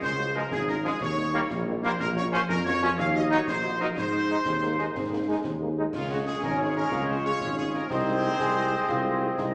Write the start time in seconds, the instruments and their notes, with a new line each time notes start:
0.02 tuba C#2, woodwind section C5, trumpet section C5, concert bass drum, snare, crash
0.18 french horn section G#3 C#4 F4
0.34 trombone section F3 G#3, french horn section G#3 C#4 F4, woodwind section A#4, trumpet section A#4
0.51 tuba G#1, woodwind section G#4, trumpet section G#4, concert bass drum, snare
0.67 french horn section G#3 C#4 F4, trumpet section A#4, woodwind section A#4, snare
0.83 trombone section F3 G#3, french horn section G#3 C#4 F4, woodwind section G#4, trumpet section G#4, snare
1.01 tuba D#2, woodwind section C#5, trumpet section C#5, concert bass drum, snare
1.17 french horn section G3 A#3 D#4
1.33 french horn section G3 A#3 D#4, trombone section G3 A#3
1.50 tuba A#1, concert bass drum, snare
1.66 french horn section G3 A#3 D#4
1.82 french horn section G3 A#3 D#4, trombone section G3 A#3, trumpet section C5, woodwind section C5, snare
1.99 tuba A#1, woodwind section A#4, trumpet section A#4, concert bass drum, snare, crash
2.15 french horn section A#3 C#4 F4, trumpet section C#5, woodwind section C#5
2.31 trombone section F3 C#4, french horn section A#3 C#4 F4, woodwind section C5, trumpet section C5
2.49 tuba F2, woodwind section A#4, trumpet section A#4, concert bass drum, snare
2.65 french horn section A#3 C#4 F4, woodwind section C#5, trumpet section C#5, snare
2.81 trombone section F3 C#4, french horn section A#3 C#4 F4, woodwind section C#5, trumpet section C#5, snare
2.98 tuba D#2, trumpet section F5, woodwind section F5, concert bass drum, snare
3.14 french horn section A#3 D#4 F#4, trumpet section D#5, woodwind section D#5
3.30 trombone section F#3 D#4, french horn section A#3 D#4 F#4, trumpet section C#5, woodwind section C#5
3.47 tuba A#1, trumpet section C5, woodwind section C5, concert bass drum, snare
3.63 french horn section A#3 D#4 F#4
3.80 trombone section F#3 D#4, french horn section A#3 D#4 F#4, woodwind section A#4, trumpet section A#4, snare
3.97 tuba G#2, trumpet section C5, woodwind section C5, concert bass drum, snare, crash
4.13 french horn section G#3 D#4 G#4
4.29 trombone section G#3 D#4, french horn section G#3 D#4 G#4
4.45 tuba D#2, euphonium C4, concert bass drum, snare
4.62 french horn section G#3 D#4 G#4, euphonium A#3, snare
4.77 trombone section G#3 D#4, euphonium G#3, french horn section G#3 D#4 G#4, snare
4.94 tuba G#2, euphonium C4, concert bass drum, snare
5.10 french horn section G#3 D#4 G#4, euphonium A#3
5.27 euphonium G#3, french horn section G#3 D#4 G#4, trombone section G#3 D#4
5.43 tuba D#2, euphonium C4, concert bass drum, snare
5.60 french horn section G#3 D#4 G#4, euphonium A#3
5.77 french horn section G#3 D#4 G#4, trombone section G#3 D#4, euphonium G#3
5.93 tuba C#2, trombone section G#3 C#4, trumpet section F4, woodwind section G#4 C#5, concert bass drum, snare, crash
6.09 french horn section G#3 C#4 G#4, trumpet section F#4
6.25 french horn section G#3 C#4 G#4, trumpet section G#4
6.42 tuba G#1, euphonium C#4, trumpet section A#4, concert bass drum, snare
6.59 french horn section G#3 C#4 G#4, trumpet section G#4
6.75 french horn section G#3 C#4 G#4, trumpet section A#4
6.91 tuba C#2, euphonium F4, concert bass drum, snare
7.07 french horn section G#3 C#4 G#4, trumpet section C5
7.24 french horn section G#3 C#4 G#4, trumpet section C#5
7.41 tuba G#1, concert bass drum, snare
7.57 french horn section G#3 C#4 G#4, trumpet section G#4
7.74 french horn section G#3 C#4 G#4, trumpet section A#4, snare
7.89 tuba C2, trombone section G#3 C4, euphonium D#4, woodwind section G#4 D#5, trumpet section C5, concert bass drum, snare, crash
8.07 french horn section G#3 D#4 G#4
8.23 french horn section G#3 D#4 G#4
8.40 tuba C2, euphonium G#4, concert bass drum, snare
8.56 french horn section G#3 D#4 G#4
8.72 french horn section G#3 D#4 G#4
8.88 tuba C2, euphonium F4, concert bass drum, snare
9.05 french horn section G#3 D#4 G#4
9.21 french horn section G#3 D#4 G#4
9.38 tuba C2, euphonium D#4, concert bass drum, snare